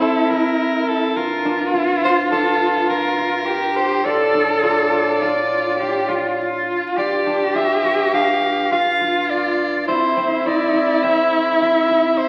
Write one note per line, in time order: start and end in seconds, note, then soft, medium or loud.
0.00 1.13 F2 medium
0.00 2.43 C4 medium
0.00 1.18 E4 medium
0.00 0.29 E4 medium
0.00 0.32 A4 medium
0.30 1.22 E4 medium
0.30 0.90 A#4 medium
0.88 1.19 A4 medium
1.16 4.00 G2 medium
1.16 1.73 F4 medium
1.16 3.47 F4 medium
1.16 1.77 A#4 medium
1.45 2.31 D4 medium
1.74 2.02 F4 medium
2.03 2.89 F4 medium
2.03 2.17 C5 medium
2.31 4.34 D4 medium
2.31 2.85 A4 medium
2.89 3.18 F4 medium
2.89 3.78 A#4 medium
3.18 4.05 F4 medium
3.45 4.05 G4 medium
3.76 4.07 C5 medium
4.04 6.80 A2 medium
4.04 4.62 F4 medium
4.04 5.22 A4 medium
4.04 4.63 D5 medium
4.34 5.21 D4 medium
4.62 4.91 F4 medium
4.62 6.64 D5 medium
4.92 5.80 F4 medium
5.21 7.26 D4 medium
5.21 5.78 F4 medium
5.79 6.08 F4 medium
5.79 6.10 G4 medium
6.08 6.37 F4 medium
6.08 6.97 F4 medium
6.38 6.98 F4 medium
6.96 9.84 G2 medium
6.96 7.54 F4 medium
6.96 8.74 G4 medium
6.96 7.57 D5 medium
7.26 8.12 D4 medium
7.55 7.84 F4 medium
7.55 8.14 E5 medium
7.84 8.71 F4 medium
8.13 10.93 D4 medium
8.13 8.68 F5 medium
8.71 9.00 F4 medium
8.71 9.89 F4 medium
8.71 9.32 F5 medium
9.01 9.94 F4 medium
9.30 9.87 D5 medium
9.88 12.29 F2 medium
9.88 12.29 E4 medium
9.88 10.46 E4 medium
9.88 10.48 C5 medium
10.17 11.03 C4 medium
10.46 10.74 E4 medium
10.46 11.05 D5 medium
10.74 11.61 E4 medium
11.03 12.29 C4 medium
11.03 11.61 E5 medium
11.61 11.90 E4 medium
11.61 12.19 E5 medium
11.90 12.29 E4 medium
12.18 12.29 C5 medium